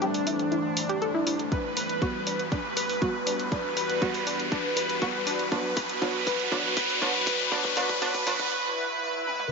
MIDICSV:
0, 0, Header, 1, 8, 480
1, 0, Start_track
1, 0, Tempo, 500000
1, 1458, Time_signature, 4, 2, 24, 8
1, 9137, End_track
2, 0, Start_track
2, 0, Title_t, "Supersaw synth"
2, 0, Program_c, 0, 81
2, 0, Note_on_c, 0, 62, 109
2, 1363, Note_off_c, 0, 62, 0
2, 1458, Note_on_c, 0, 71, 104
2, 2323, Note_off_c, 0, 71, 0
2, 2417, Note_on_c, 0, 71, 101
2, 3283, Note_off_c, 0, 71, 0
2, 3378, Note_on_c, 0, 71, 106
2, 4243, Note_off_c, 0, 71, 0
2, 4338, Note_on_c, 0, 71, 106
2, 5203, Note_off_c, 0, 71, 0
2, 5299, Note_on_c, 0, 71, 106
2, 5759, Note_off_c, 0, 71, 0
2, 5778, Note_on_c, 0, 71, 103
2, 6239, Note_off_c, 0, 71, 0
2, 6258, Note_on_c, 0, 71, 104
2, 6719, Note_off_c, 0, 71, 0
2, 6737, Note_on_c, 0, 71, 102
2, 7198, Note_off_c, 0, 71, 0
2, 7217, Note_on_c, 0, 71, 104
2, 7439, Note_off_c, 0, 71, 0
2, 7458, Note_on_c, 0, 71, 101
2, 7679, Note_off_c, 0, 71, 0
2, 7697, Note_on_c, 0, 71, 106
2, 7919, Note_off_c, 0, 71, 0
2, 7937, Note_on_c, 0, 71, 107
2, 8158, Note_off_c, 0, 71, 0
2, 8178, Note_on_c, 0, 71, 104
2, 8399, Note_off_c, 0, 71, 0
2, 8418, Note_on_c, 0, 71, 102
2, 8639, Note_off_c, 0, 71, 0
2, 8657, Note_on_c, 0, 71, 100
2, 8879, Note_off_c, 0, 71, 0
2, 8898, Note_on_c, 0, 71, 106
2, 9119, Note_off_c, 0, 71, 0
2, 9137, End_track
3, 0, Start_track
3, 0, Title_t, "Synth pluck"
3, 0, Program_c, 1, 84
3, 17, Note_on_c, 1, 67, 105
3, 68, Note_off_c, 1, 67, 0
3, 258, Note_on_c, 1, 64, 76
3, 308, Note_off_c, 1, 64, 0
3, 497, Note_on_c, 1, 64, 81
3, 572, Note_off_c, 1, 64, 0
3, 858, Note_on_c, 1, 67, 103
3, 908, Note_off_c, 1, 67, 0
3, 978, Note_on_c, 1, 69, 102
3, 1008, Note_off_c, 1, 69, 0
3, 1099, Note_on_c, 1, 64, 100
3, 1129, Note_off_c, 1, 64, 0
3, 1218, Note_on_c, 1, 64, 78
3, 1268, Note_off_c, 1, 64, 0
3, 1458, Note_on_c, 1, 62, 76
3, 1508, Note_off_c, 1, 62, 0
3, 1698, Note_on_c, 1, 71, 67
3, 1748, Note_off_c, 1, 71, 0
3, 1938, Note_on_c, 1, 66, 93
3, 1988, Note_off_c, 1, 66, 0
3, 2178, Note_on_c, 1, 62, 70
3, 2228, Note_off_c, 1, 62, 0
3, 2418, Note_on_c, 1, 62, 75
3, 2468, Note_off_c, 1, 62, 0
3, 2657, Note_on_c, 1, 71, 71
3, 2708, Note_off_c, 1, 71, 0
3, 2898, Note_on_c, 1, 66, 95
3, 2948, Note_off_c, 1, 66, 0
3, 3138, Note_on_c, 1, 62, 75
3, 3188, Note_off_c, 1, 62, 0
3, 3378, Note_on_c, 1, 62, 80
3, 3428, Note_off_c, 1, 62, 0
3, 3618, Note_on_c, 1, 71, 71
3, 3668, Note_off_c, 1, 71, 0
3, 3857, Note_on_c, 1, 66, 97
3, 3907, Note_off_c, 1, 66, 0
3, 4097, Note_on_c, 1, 62, 74
3, 4148, Note_off_c, 1, 62, 0
3, 4338, Note_on_c, 1, 62, 79
3, 4388, Note_off_c, 1, 62, 0
3, 4578, Note_on_c, 1, 71, 74
3, 4628, Note_off_c, 1, 71, 0
3, 4818, Note_on_c, 1, 66, 102
3, 4868, Note_off_c, 1, 66, 0
3, 5057, Note_on_c, 1, 62, 73
3, 5108, Note_off_c, 1, 62, 0
3, 5297, Note_on_c, 1, 62, 81
3, 5348, Note_off_c, 1, 62, 0
3, 5537, Note_on_c, 1, 71, 76
3, 5587, Note_off_c, 1, 71, 0
3, 5778, Note_on_c, 1, 62, 85
3, 5828, Note_off_c, 1, 62, 0
3, 6017, Note_on_c, 1, 71, 79
3, 6068, Note_off_c, 1, 71, 0
3, 6258, Note_on_c, 1, 62, 81
3, 6308, Note_off_c, 1, 62, 0
3, 6497, Note_on_c, 1, 71, 75
3, 6547, Note_off_c, 1, 71, 0
3, 6737, Note_on_c, 1, 62, 84
3, 6788, Note_off_c, 1, 62, 0
3, 6977, Note_on_c, 1, 71, 78
3, 7028, Note_off_c, 1, 71, 0
3, 7218, Note_on_c, 1, 62, 85
3, 7268, Note_off_c, 1, 62, 0
3, 7458, Note_on_c, 1, 62, 85
3, 7508, Note_off_c, 1, 62, 0
3, 7697, Note_on_c, 1, 62, 90
3, 7747, Note_off_c, 1, 62, 0
3, 7937, Note_on_c, 1, 62, 83
3, 7987, Note_off_c, 1, 62, 0
3, 9137, End_track
4, 0, Start_track
4, 0, Title_t, "Synth stab"
4, 0, Program_c, 2, 62
4, 18, Note_on_c, 2, 55, 91
4, 18, Note_on_c, 2, 57, 83
4, 18, Note_on_c, 2, 60, 99
4, 1444, Note_off_c, 2, 55, 0
4, 1444, Note_off_c, 2, 57, 0
4, 1444, Note_off_c, 2, 60, 0
4, 1938, Note_on_c, 2, 55, 84
4, 1938, Note_on_c, 2, 59, 76
4, 1938, Note_on_c, 2, 66, 91
4, 2399, Note_off_c, 2, 55, 0
4, 2399, Note_off_c, 2, 59, 0
4, 2399, Note_off_c, 2, 66, 0
4, 2898, Note_on_c, 2, 55, 83
4, 2898, Note_on_c, 2, 59, 76
4, 2898, Note_on_c, 2, 66, 89
4, 3359, Note_off_c, 2, 55, 0
4, 3359, Note_off_c, 2, 59, 0
4, 3359, Note_off_c, 2, 66, 0
4, 3858, Note_on_c, 2, 55, 86
4, 3858, Note_on_c, 2, 59, 79
4, 3858, Note_on_c, 2, 66, 94
4, 4319, Note_off_c, 2, 55, 0
4, 4319, Note_off_c, 2, 59, 0
4, 4319, Note_off_c, 2, 66, 0
4, 4818, Note_on_c, 2, 55, 86
4, 4818, Note_on_c, 2, 59, 80
4, 4818, Note_on_c, 2, 66, 95
4, 5279, Note_off_c, 2, 55, 0
4, 5279, Note_off_c, 2, 59, 0
4, 5279, Note_off_c, 2, 66, 0
4, 5298, Note_on_c, 2, 54, 85
4, 5298, Note_on_c, 2, 59, 80
4, 5298, Note_on_c, 2, 66, 97
4, 5759, Note_off_c, 2, 54, 0
4, 5759, Note_off_c, 2, 59, 0
4, 5759, Note_off_c, 2, 66, 0
4, 5778, Note_on_c, 2, 54, 89
4, 5778, Note_on_c, 2, 59, 83
4, 5778, Note_on_c, 2, 66, 99
4, 6239, Note_off_c, 2, 54, 0
4, 6239, Note_off_c, 2, 59, 0
4, 6239, Note_off_c, 2, 66, 0
4, 6258, Note_on_c, 2, 54, 86
4, 6258, Note_on_c, 2, 59, 80
4, 6258, Note_on_c, 2, 66, 92
4, 6719, Note_off_c, 2, 54, 0
4, 6719, Note_off_c, 2, 59, 0
4, 6719, Note_off_c, 2, 66, 0
4, 6737, Note_on_c, 2, 54, 91
4, 6738, Note_on_c, 2, 59, 84
4, 6738, Note_on_c, 2, 66, 99
4, 7199, Note_off_c, 2, 54, 0
4, 7199, Note_off_c, 2, 59, 0
4, 7199, Note_off_c, 2, 66, 0
4, 7218, Note_on_c, 2, 54, 92
4, 7218, Note_on_c, 2, 59, 84
4, 7218, Note_on_c, 2, 66, 98
4, 7439, Note_off_c, 2, 54, 0
4, 7439, Note_off_c, 2, 59, 0
4, 7439, Note_off_c, 2, 66, 0
4, 7458, Note_on_c, 2, 54, 92
4, 7458, Note_on_c, 2, 59, 85
4, 7458, Note_on_c, 2, 66, 105
4, 7679, Note_off_c, 2, 54, 0
4, 7679, Note_off_c, 2, 59, 0
4, 7679, Note_off_c, 2, 66, 0
4, 7698, Note_on_c, 2, 54, 93
4, 7698, Note_on_c, 2, 59, 86
4, 7698, Note_on_c, 2, 66, 102
4, 7919, Note_off_c, 2, 54, 0
4, 7919, Note_off_c, 2, 59, 0
4, 7919, Note_off_c, 2, 66, 0
4, 7938, Note_on_c, 2, 54, 94
4, 7938, Note_on_c, 2, 59, 84
4, 7938, Note_on_c, 2, 66, 102
4, 8159, Note_off_c, 2, 54, 0
4, 8159, Note_off_c, 2, 59, 0
4, 8159, Note_off_c, 2, 66, 0
4, 9137, End_track
5, 0, Start_track
5, 0, Title_t, "Ambient pad"
5, 0, Program_c, 3, 92
5, 0, Note_on_c, 3, 52, 84
5, 0, Note_on_c, 3, 55, 75
5, 0, Note_on_c, 3, 57, 75
5, 0, Note_on_c, 3, 72, 91
5, 1419, Note_off_c, 3, 55, 0
5, 1419, Note_off_c, 3, 57, 0
5, 1419, Note_off_c, 3, 72, 0
5, 1420, Note_off_c, 3, 52, 0
5, 1458, Note_on_c, 3, 55, 73
5, 1458, Note_on_c, 3, 71, 92
5, 1459, Note_on_c, 3, 40, 82
5, 1459, Note_on_c, 3, 66, 77
5, 5260, Note_off_c, 3, 40, 0
5, 5260, Note_off_c, 3, 55, 0
5, 5260, Note_off_c, 3, 66, 0
5, 5260, Note_off_c, 3, 71, 0
5, 5298, Note_on_c, 3, 52, 84
5, 5298, Note_on_c, 3, 74, 93
5, 5299, Note_on_c, 3, 66, 76
5, 8149, Note_off_c, 3, 52, 0
5, 8149, Note_off_c, 3, 66, 0
5, 8149, Note_off_c, 3, 74, 0
5, 9137, End_track
6, 0, Start_track
6, 0, Title_t, "Riser"
6, 0, Program_c, 4, 103
6, 0, Note_on_c, 4, 60, 75
6, 8178, Note_off_c, 4, 60, 0
6, 9137, End_track
7, 0, Start_track
7, 0, Title_t, "Swell"
7, 0, Program_c, 5, 103
7, 8178, Note_on_c, 5, 60, 80
7, 9137, Note_off_c, 5, 60, 0
7, 9137, End_track
8, 0, Start_track
8, 0, Title_t, "Drums"
8, 17, Note_on_c, 9, 42, 32
8, 113, Note_off_c, 9, 42, 0
8, 138, Note_on_c, 9, 46, 63
8, 234, Note_off_c, 9, 46, 0
8, 257, Note_on_c, 9, 46, 113
8, 353, Note_off_c, 9, 46, 0
8, 379, Note_on_c, 9, 42, 41
8, 475, Note_off_c, 9, 42, 0
8, 498, Note_on_c, 9, 42, 33
8, 594, Note_off_c, 9, 42, 0
8, 737, Note_on_c, 9, 46, 110
8, 833, Note_off_c, 9, 46, 0
8, 859, Note_on_c, 9, 42, 42
8, 955, Note_off_c, 9, 42, 0
8, 977, Note_on_c, 9, 42, 33
8, 1073, Note_off_c, 9, 42, 0
8, 1217, Note_on_c, 9, 46, 107
8, 1313, Note_off_c, 9, 46, 0
8, 1338, Note_on_c, 9, 42, 43
8, 1434, Note_off_c, 9, 42, 0
8, 1457, Note_on_c, 9, 36, 100
8, 1457, Note_on_c, 9, 42, 33
8, 1553, Note_off_c, 9, 36, 0
8, 1553, Note_off_c, 9, 42, 0
8, 1697, Note_on_c, 9, 46, 104
8, 1793, Note_off_c, 9, 46, 0
8, 1818, Note_on_c, 9, 42, 43
8, 1914, Note_off_c, 9, 42, 0
8, 1937, Note_on_c, 9, 42, 33
8, 1938, Note_on_c, 9, 36, 100
8, 2033, Note_off_c, 9, 42, 0
8, 2034, Note_off_c, 9, 36, 0
8, 2177, Note_on_c, 9, 46, 106
8, 2273, Note_off_c, 9, 46, 0
8, 2299, Note_on_c, 9, 42, 41
8, 2395, Note_off_c, 9, 42, 0
8, 2418, Note_on_c, 9, 36, 101
8, 2418, Note_on_c, 9, 42, 34
8, 2514, Note_off_c, 9, 36, 0
8, 2514, Note_off_c, 9, 42, 0
8, 2657, Note_on_c, 9, 46, 107
8, 2753, Note_off_c, 9, 46, 0
8, 2779, Note_on_c, 9, 46, 61
8, 2875, Note_off_c, 9, 46, 0
8, 2897, Note_on_c, 9, 36, 99
8, 2898, Note_on_c, 9, 42, 33
8, 2993, Note_off_c, 9, 36, 0
8, 2994, Note_off_c, 9, 42, 0
8, 3137, Note_on_c, 9, 46, 105
8, 3233, Note_off_c, 9, 46, 0
8, 3259, Note_on_c, 9, 42, 44
8, 3355, Note_off_c, 9, 42, 0
8, 3378, Note_on_c, 9, 36, 103
8, 3378, Note_on_c, 9, 42, 34
8, 3474, Note_off_c, 9, 36, 0
8, 3474, Note_off_c, 9, 42, 0
8, 3617, Note_on_c, 9, 46, 99
8, 3713, Note_off_c, 9, 46, 0
8, 3739, Note_on_c, 9, 42, 46
8, 3835, Note_off_c, 9, 42, 0
8, 3858, Note_on_c, 9, 36, 101
8, 3858, Note_on_c, 9, 42, 34
8, 3954, Note_off_c, 9, 36, 0
8, 3954, Note_off_c, 9, 42, 0
8, 3979, Note_on_c, 9, 46, 58
8, 4075, Note_off_c, 9, 46, 0
8, 4098, Note_on_c, 9, 46, 103
8, 4194, Note_off_c, 9, 46, 0
8, 4219, Note_on_c, 9, 42, 43
8, 4315, Note_off_c, 9, 42, 0
8, 4338, Note_on_c, 9, 36, 103
8, 4338, Note_on_c, 9, 42, 34
8, 4434, Note_off_c, 9, 36, 0
8, 4434, Note_off_c, 9, 42, 0
8, 4577, Note_on_c, 9, 46, 106
8, 4673, Note_off_c, 9, 46, 0
8, 4699, Note_on_c, 9, 42, 45
8, 4795, Note_off_c, 9, 42, 0
8, 4817, Note_on_c, 9, 42, 35
8, 4818, Note_on_c, 9, 36, 104
8, 4913, Note_off_c, 9, 42, 0
8, 4914, Note_off_c, 9, 36, 0
8, 5057, Note_on_c, 9, 46, 103
8, 5153, Note_off_c, 9, 46, 0
8, 5179, Note_on_c, 9, 42, 45
8, 5275, Note_off_c, 9, 42, 0
8, 5297, Note_on_c, 9, 42, 36
8, 5298, Note_on_c, 9, 36, 101
8, 5393, Note_off_c, 9, 42, 0
8, 5394, Note_off_c, 9, 36, 0
8, 5537, Note_on_c, 9, 46, 101
8, 5538, Note_on_c, 9, 36, 105
8, 5633, Note_off_c, 9, 46, 0
8, 5634, Note_off_c, 9, 36, 0
8, 5659, Note_on_c, 9, 42, 48
8, 5755, Note_off_c, 9, 42, 0
8, 5777, Note_on_c, 9, 42, 35
8, 5778, Note_on_c, 9, 36, 105
8, 5873, Note_off_c, 9, 42, 0
8, 5874, Note_off_c, 9, 36, 0
8, 6017, Note_on_c, 9, 46, 103
8, 6018, Note_on_c, 9, 36, 102
8, 6113, Note_off_c, 9, 46, 0
8, 6114, Note_off_c, 9, 36, 0
8, 6139, Note_on_c, 9, 42, 46
8, 6235, Note_off_c, 9, 42, 0
8, 6257, Note_on_c, 9, 42, 35
8, 6258, Note_on_c, 9, 36, 106
8, 6353, Note_off_c, 9, 42, 0
8, 6354, Note_off_c, 9, 36, 0
8, 6497, Note_on_c, 9, 46, 103
8, 6498, Note_on_c, 9, 36, 108
8, 6593, Note_off_c, 9, 46, 0
8, 6594, Note_off_c, 9, 36, 0
8, 6619, Note_on_c, 9, 46, 60
8, 6715, Note_off_c, 9, 46, 0
8, 6738, Note_on_c, 9, 36, 103
8, 6738, Note_on_c, 9, 42, 37
8, 6834, Note_off_c, 9, 36, 0
8, 6834, Note_off_c, 9, 42, 0
8, 6978, Note_on_c, 9, 36, 105
8, 6978, Note_on_c, 9, 46, 102
8, 7074, Note_off_c, 9, 36, 0
8, 7074, Note_off_c, 9, 46, 0
8, 7099, Note_on_c, 9, 42, 47
8, 7195, Note_off_c, 9, 42, 0
8, 7218, Note_on_c, 9, 36, 102
8, 7218, Note_on_c, 9, 42, 36
8, 7314, Note_off_c, 9, 36, 0
8, 7314, Note_off_c, 9, 42, 0
8, 7339, Note_on_c, 9, 36, 94
8, 7435, Note_off_c, 9, 36, 0
8, 7457, Note_on_c, 9, 36, 105
8, 7458, Note_on_c, 9, 46, 104
8, 7553, Note_off_c, 9, 36, 0
8, 7554, Note_off_c, 9, 46, 0
8, 7579, Note_on_c, 9, 36, 94
8, 7579, Note_on_c, 9, 42, 51
8, 7675, Note_off_c, 9, 36, 0
8, 7675, Note_off_c, 9, 42, 0
8, 7698, Note_on_c, 9, 36, 104
8, 7698, Note_on_c, 9, 42, 37
8, 7794, Note_off_c, 9, 36, 0
8, 7794, Note_off_c, 9, 42, 0
8, 7819, Note_on_c, 9, 36, 96
8, 7819, Note_on_c, 9, 46, 59
8, 7915, Note_off_c, 9, 36, 0
8, 7915, Note_off_c, 9, 46, 0
8, 7937, Note_on_c, 9, 46, 103
8, 7938, Note_on_c, 9, 36, 103
8, 8033, Note_off_c, 9, 46, 0
8, 8034, Note_off_c, 9, 36, 0
8, 8059, Note_on_c, 9, 36, 94
8, 8059, Note_on_c, 9, 42, 45
8, 8155, Note_off_c, 9, 36, 0
8, 8155, Note_off_c, 9, 42, 0
8, 8897, Note_on_c, 9, 48, 63
8, 8993, Note_off_c, 9, 48, 0
8, 9019, Note_on_c, 9, 47, 76
8, 9115, Note_off_c, 9, 47, 0
8, 9137, End_track
0, 0, End_of_file